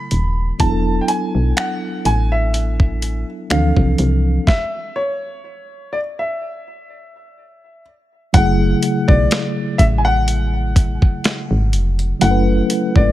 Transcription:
0.00 0.56 C#3 medium
0.00 0.55 F#3 medium
0.00 0.56 A3 medium
0.00 0.57 E4 medium
0.00 0.58 A4 medium
0.00 0.63 B5 loud
0.11 0.52 D#1 medium
0.11 closed hi-hat medium
0.59 1.00 E1 loud
0.59 3.46 F#3 medium
0.59 3.46 B3 medium
0.59 3.47 D4 medium
0.59 3.47 E4 medium
0.59 1.03 A5 loud
0.59 kick loud
0.59 closed hi-hat medium
0.63 0.69 G#4 medium
0.70 3.51 A4 medium
1.01 1.08 G5 medium
1.08 1.58 G#5 medium
1.08 closed hi-hat medium
1.35 1.53 B1 medium
1.57 2.02 F#5 medium
1.57 finger snap loud
1.57 closed hi-hat medium
2.05 3.24 A1 medium
2.05 2.32 G#5 loud
2.05 closed hi-hat medium
2.32 3.24 E5 medium
2.54 closed hi-hat medium
2.80 kick medium
3.02 closed hi-hat medium
3.50 3.72 D2 loud
3.50 4.48 E3 medium
3.50 4.47 F3 medium
3.50 4.47 C4 medium
3.50 4.48 D4 medium
3.50 4.48 A4 medium
3.50 4.50 F5 medium
3.50 finger snap loud
3.50 closed hi-hat medium
3.77 3.95 C2 medium
3.77 kick loud
3.98 4.39 C2 loud
3.98 closed hi-hat medium
4.47 4.97 E5 medium
4.47 kick loud
4.47 snare medium
4.96 5.95 C#5 medium
5.93 5.98 D5 medium
6.19 7.82 E5 medium
8.33 8.74 F#1 loud
8.33 12.18 C#3 medium
8.33 12.17 F#3 medium
8.33 12.17 A3 medium
8.33 12.18 E4 medium
8.33 9.11 F#5 loud
8.33 kick loud
8.33 closed hi-hat medium
8.38 12.19 G#4 medium
8.83 closed hi-hat medium
9.08 9.27 B1 medium
9.08 9.81 D5 medium
9.08 kick medium
9.31 snare loud
9.31 closed hi-hat medium
9.78 10.98 A1 medium
9.78 9.83 E5 medium
9.78 kick medium
9.78 closed hi-hat medium
9.98 10.06 G#5 medium
10.05 11.69 F#5 loud
10.28 closed hi-hat medium
10.76 kick medium
10.76 closed hi-hat medium
11.02 kick loud
11.24 snare loud
11.24 closed hi-hat medium
11.51 11.75 G#1 medium
11.73 12.13 F1 loud
11.73 closed hi-hat soft
11.99 closed hi-hat medium
12.19 12.62 F#1 loud
12.19 13.12 F#3 medium
12.19 13.12 A3 medium
12.19 13.12 C#4 medium
12.19 13.12 E4 medium
12.19 12.98 F#5 loud
12.19 closed hi-hat medium
12.25 12.30 A4 medium
12.31 13.12 B4 medium
12.70 closed hi-hat medium
12.96 13.12 G#1 medium
12.96 13.12 D5 medium
12.96 kick medium

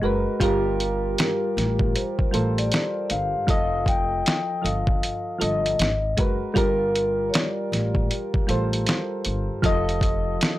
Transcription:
0.02 0.25 F#1 medium
0.02 0.36 G#3 medium
0.02 0.36 F#4 medium
0.02 0.37 A#4 medium
0.02 0.37 B4 medium
0.40 1.14 G1 medium
0.40 1.73 G3 loud
0.40 1.73 F4 loud
0.40 1.74 G4 loud
0.40 1.75 A#4 loud
0.40 kick loud
0.40 closed hi-hat medium
0.80 closed hi-hat medium
1.18 1.98 A#4 medium
1.18 snare loud
1.18 closed hi-hat medium
1.57 1.92 A1 medium
1.57 snare soft
1.57 closed hi-hat medium
1.79 kick loud
1.96 2.59 C5 medium
1.96 closed hi-hat medium
2.19 kick medium
2.31 2.69 A1 loud
2.31 3.34 G3 medium
2.31 3.34 F4 medium
2.31 3.35 A4 medium
2.31 3.35 C5 medium
2.31 closed hi-hat medium
2.58 3.12 D5 loud
2.58 closed hi-hat medium
2.72 snare medium
2.72 closed hi-hat medium
3.10 3.32 G1 medium
3.10 3.90 F5 loud
3.10 closed hi-hat medium
3.47 4.21 F1 medium
3.47 4.49 F3 loud
3.47 4.50 F4 medium
3.47 4.50 A4 medium
3.47 4.51 D#5 loud
3.47 kick loud
3.47 closed hi-hat medium
3.86 4.60 G5 loud
3.86 kick loud
3.86 closed hi-hat medium
4.26 snare loud
4.26 closed hi-hat medium
4.62 5.00 G1 medium
4.62 5.30 F3 medium
4.62 5.31 F4 medium
4.62 5.31 A4 medium
4.62 5.32 D#5 medium
4.62 5.38 F5 medium
4.62 closed hi-hat medium
4.87 kick loud
5.03 closed hi-hat medium
5.38 5.77 G1 loud
5.38 5.78 F3 medium
5.38 5.79 F4 medium
5.38 5.79 A4 medium
5.38 5.80 D#5 medium
5.38 closed hi-hat medium
5.43 6.15 D#5 medium
5.66 closed hi-hat medium
5.79 6.15 G#1 loud
5.79 snare medium
5.79 closed hi-hat medium
6.17 6.41 F#1 medium
6.17 6.51 G#3 medium
6.17 6.52 F#4 medium
6.17 6.52 A#4 medium
6.17 6.53 B4 medium
6.17 kick medium
6.17 closed hi-hat medium
6.52 7.88 G3 loud
6.52 7.88 F4 loud
6.52 7.89 G4 medium
6.52 6.57 A4 medium
6.52 kick loud
6.56 7.29 G1 loud
6.56 7.89 A#4 loud
6.56 7.31 A#4 loud
6.56 closed hi-hat medium
6.96 closed hi-hat medium
7.30 7.34 C#5 medium
7.34 8.13 D5 loud
7.34 snare loud
7.34 closed hi-hat medium
7.72 8.07 A1 medium
7.72 snare soft
7.72 closed hi-hat medium
7.95 kick loud
8.11 10.59 G4 medium
8.11 closed hi-hat medium
8.34 kick medium
8.47 8.84 A1 loud
8.47 9.49 G3 medium
8.47 9.50 F4 medium
8.47 9.50 A4 medium
8.47 9.51 C5 medium
8.47 closed hi-hat medium
8.73 closed hi-hat medium
8.87 snare medium
8.87 closed hi-hat medium
9.25 9.48 G1 medium
9.25 closed hi-hat medium
9.62 10.37 F1 medium
9.62 10.59 F3 loud
9.62 10.59 F4 loud
9.62 10.59 A4 loud
9.62 10.59 D#5 loud
9.62 kick loud
9.62 closed hi-hat medium
9.89 closed hi-hat soft
10.01 kick medium
10.01 closed hi-hat medium
10.41 snare loud
10.41 closed hi-hat medium

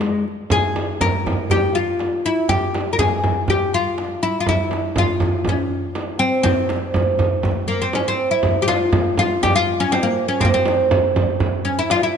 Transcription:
0.00 0.23 G#3 medium
0.00 darbuka tek medium
0.00 frame drum medium
0.15 darbuka ka soft
0.28 darbuka ka soft
0.50 1.01 G#4 medium
0.50 frame drum medium
0.50 darbuka dum loud
0.64 darbuka ka soft
0.76 darbuka tek medium
0.76 frame drum medium
0.89 darbuka ka soft
1.01 1.51 A#4 medium
1.01 frame drum medium
1.01 darbuka dum medium
1.26 darbuka dum medium
1.26 frame drum medium
1.39 darbuka ka soft
1.50 1.76 G4 medium
1.50 darbuka dum medium
1.50 frame drum medium
1.74 2.25 F4 medium
1.74 darbuka ka soft
1.99 darbuka tek medium
1.99 frame drum medium
2.12 darbuka ka soft
2.25 2.51 E4 medium
2.25 darbuka ka soft
2.49 2.92 G4 medium
2.49 darbuka dum medium
2.49 frame drum medium
2.62 darbuka ka soft
2.75 darbuka tek medium
2.75 frame drum medium
2.88 darbuka ka soft
2.93 2.99 A#4 medium
2.99 3.50 G#4 medium
2.99 darbuka dum medium
2.99 frame drum medium
3.24 frame drum medium
3.24 darbuka dum medium
3.36 darbuka ka soft
3.48 3.72 G4 medium
3.48 darbuka dum medium
3.48 frame drum medium
3.72 4.22 F4 medium
3.72 darbuka ka soft
3.98 darbuka tek medium
3.98 frame drum medium
4.11 darbuka ka soft
4.23 4.39 E4 medium
4.23 darbuka ka soft
4.40 4.47 F4 medium
4.46 4.94 E4 medium
4.46 frame drum medium
4.46 darbuka dum medium
4.60 darbuka ka soft
4.71 darbuka tek medium
4.71 frame drum medium
4.85 darbuka ka soft
4.96 5.44 F4 medium
4.96 frame drum medium
4.96 darbuka dum medium
5.20 frame drum medium
5.20 darbuka dum medium
5.36 darbuka ka soft
5.45 frame drum medium
5.45 darbuka dum medium
5.49 5.94 C#4 medium
5.95 darbuka tek medium
5.95 frame drum medium
6.09 darbuka ka soft
6.19 6.42 C4 medium
6.19 darbuka ka soft
6.43 7.80 C4 medium
6.43 frame drum medium
6.43 darbuka dum medium
6.59 darbuka ka soft
6.69 darbuka tek medium
6.69 frame drum medium
6.84 darbuka ka soft
6.94 frame drum medium
6.94 darbuka dum medium
7.09 darbuka ka soft
7.19 frame drum medium
7.19 darbuka dum medium
7.32 darbuka ka soft
7.43 frame drum medium
7.43 darbuka dum medium
7.68 7.81 A#3 medium
7.68 darbuka ka soft
7.82 7.94 C4 medium
7.82 darbuka ka soft
7.93 8.07 C#4 medium
7.93 darbuka tek medium
7.93 frame drum medium
8.07 8.31 C4 medium
8.07 darbuka ka soft
8.20 darbuka ka soft
8.31 8.62 E4 medium
8.43 frame drum medium
8.43 darbuka dum medium
8.58 8.67 G4 medium
8.58 darbuka ka soft
8.68 9.18 F4 medium
8.68 darbuka tek medium
8.68 frame drum medium
8.82 darbuka ka soft
8.92 darbuka dum medium
8.92 frame drum loud
9.07 darbuka ka soft
9.18 9.43 F4 medium
9.18 frame drum medium
9.32 darbuka ka soft
9.43 9.55 G4 medium
9.43 frame drum medium
9.43 darbuka dum medium
9.56 9.81 F4 loud
9.70 darbuka ka soft
9.80 9.93 C#4 medium
9.92 10.05 C4 medium
9.92 darbuka tek medium
9.92 frame drum medium
10.03 10.28 A#3 medium
10.19 darbuka ka soft
10.28 10.42 C#4 medium
10.40 10.48 C4 medium
10.40 frame drum medium
10.40 darbuka dum loud
10.45 10.54 A#3 medium
10.54 10.88 C4 medium
10.54 darbuka ka soft
10.66 darbuka tek medium
10.66 frame drum medium
10.81 darbuka ka soft
10.91 frame drum medium
10.91 darbuka dum medium
11.05 darbuka ka soft
11.16 frame drum medium
11.16 darbuka dum medium
11.29 darbuka ka soft
11.40 darbuka dum medium
11.40 frame drum medium
11.65 11.78 C#4 medium
11.65 darbuka ka soft
11.79 11.90 E4 medium
11.90 12.03 F4 medium
11.90 darbuka tek medium
11.90 frame drum medium
12.03 12.17 E4 medium
12.14 darbuka ka soft

